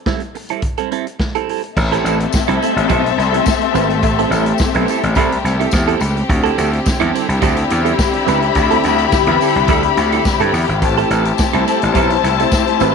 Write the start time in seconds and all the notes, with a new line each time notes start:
0.06 G3 C4 E4 A4, kick, snare
0.20 muted clean electric guitar stroke, closed hi-hat
0.35 muted clean electric guitar stroke, open hi-hat
0.49 G3 C4 E4 A4, closed hi-hat
0.62 kick, closed hi-hat
0.77 G3 C4 E4 A4, closed hi-hat
0.91 G3 C4 E4 A4, closed hi-hat
1.06 muted clean electric guitar stroke, closed hi-hat
1.19 muted clean electric guitar stroke, kick, snare
1.35 G3 C4 E4 A4, closed hi-hat
1.49 G3 C4 E4 A4, open hi-hat
1.64 closed hi-hat
1.76 A1 A3 C4 G4 A4 E5, muted clean electric guitar stroke, kick, crash, tambourine
1.92 G3 C4 E4 A4, closed hi-hat
2.04 A1 G3 C4 E4 A4, closed hi-hat, tambourine
2.20 closed hi-hat
2.32 muted clean electric guitar stroke, kick, snare, tambourine
2.48 C2 G3 C4 E4 A4, closed hi-hat
2.61 G3 C4 E4 A4, closed hi-hat, tambourine
2.76 A1, muted clean electric guitar stroke, closed hi-hat
2.89 B1 G3 C4 E4 A4, kick, closed hi-hat, tambourine
3.05 muted clean electric guitar stroke, closed hi-hat
3.18 C2, muted clean electric guitar stroke, snare, closed hi-hat
3.33 G3 C4 E4 A4, closed hi-hat
3.46 kick, snare, tambourine
3.61 muted clean electric guitar stroke, closed hi-hat
3.74 G#1 G3 C4 E4 B4, closed hi-hat, tambourine
3.89 muted clean electric guitar stroke, closed hi-hat
4.03 A1, muted clean electric guitar stroke, kick, closed hi-hat, tambourine
4.19 G3 C4 E4 A4, closed hi-hat
4.30 A1 G3 C4 E4 A4, closed hi-hat, tambourine
4.46 muted clean electric guitar stroke, closed hi-hat
4.58 muted clean electric guitar stroke, kick, snare, tambourine
4.74 B1 G3 C4 E4 B4, closed hi-hat
4.88 G3 C4 E4 A4, closed hi-hat, tambourine
5.03 A1, closed hi-hat
5.15 C2 G3 C4 E4 A4, kick, closed hi-hat, tambourine
5.32 muted clean electric guitar stroke, closed hi-hat
5.44 C2, muted clean electric guitar stroke, snare, closed hi-hat
5.60 G3 C4 E4 A4, closed hi-hat
5.71 E2, kick, snare, tambourine
5.88 G3 C4 E4 A4, closed hi-hat
6.00 C#2, muted clean electric guitar stroke, closed hi-hat, tambourine
6.17 muted clean electric guitar stroke, closed hi-hat
6.28 D2 D3 E4, muted clean electric guitar stroke, kick, closed hi-hat
6.44 G3 C4 E4 A4, closed hi-hat
6.57 D2 G3 C4 E4 A4, closed hi-hat, tambourine
6.73 closed hi-hat
6.86 muted clean electric guitar stroke, kick, snare, tambourine
7.00 E2 G3 C4 E4 A4, closed hi-hat
7.13 G3 C4 E4 A4, closed hi-hat, tambourine
7.28 C2, muted clean electric guitar stroke, closed hi-hat
7.42 D2 G3 C4 E4 G4 A4 E5 B5, kick, closed hi-hat, tambourine
7.56 muted clean electric guitar stroke, closed hi-hat
7.70 E2, muted clean electric guitar stroke, closed hi-hat, tambourine
7.85 G3 C4 E4 A4, closed hi-hat
7.99 kick, snare, tambourine
8.13 muted clean electric guitar stroke, closed hi-hat
8.26 C#2 G3 C4 E4 B4, closed hi-hat, tambourine
8.42 muted clean electric guitar stroke, closed hi-hat
8.55 D2, muted clean electric guitar stroke, kick, closed hi-hat, tambourine
8.71 G3 C4 E4 A4, closed hi-hat
8.83 D2 G3 C4 E4 A4, closed hi-hat, tambourine
8.98 muted clean electric guitar stroke, closed hi-hat
9.12 muted clean electric guitar stroke, kick, snare, tambourine
9.27 E2 G3 C4 E4 B4, closed hi-hat
9.41 G3 C4 E4 A4, open hi-hat, tambourine
9.55 C2, muted clean electric guitar stroke, closed hi-hat
9.68 D2 G3 C4 E4 A4, kick, closed hi-hat, tambourine
9.83 muted clean electric guitar stroke, closed hi-hat
9.97 D2, muted clean electric guitar stroke, snare, closed hi-hat, tambourine
10.12 G3 C4 E4 A4, closed hi-hat
10.25 muted clean electric guitar stroke, kick, snare, tambourine
10.40 G2 G3 C4 E4 A4, closed hi-hat
10.53 E2, muted clean electric guitar stroke, open hi-hat, tambourine
10.68 G#1, muted clean electric guitar stroke, closed hi-hat
10.81 A1 A3 C4 E4 C5 A5, muted clean electric guitar stroke, kick, closed hi-hat, tambourine
10.98 G3 C4 E4 A4, closed hi-hat
11.10 A1 G3 C4 E4 A4, closed hi-hat, tambourine
11.25 closed hi-hat
11.38 muted clean electric guitar stroke, kick, snare, tambourine
11.53 C2 G3 C4 E4 A4, closed hi-hat
11.67 G3 C4 E4 A4, closed hi-hat, tambourine
11.82 A1, closed hi-hat
11.95 B1 G3 C4 E4 A4, kick, closed hi-hat, tambourine
12.10 muted clean electric guitar stroke, closed hi-hat
12.23 C2, muted clean electric guitar stroke, snare, closed hi-hat, tambourine
12.39 G3 C4 E4 A4, closed hi-hat
12.52 muted clean electric guitar stroke, kick, snare, tambourine
12.67 muted clean electric guitar stroke, closed hi-hat
12.80 G#1 G3 C4 E4 B4, closed hi-hat, tambourine